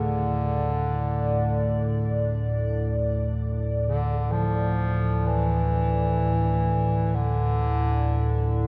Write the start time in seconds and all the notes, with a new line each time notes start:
Already playing: D2 A2 D3 A3 E4 A4 D5
3.86 D3
4.32 F3
5.27 E3
7.15 D3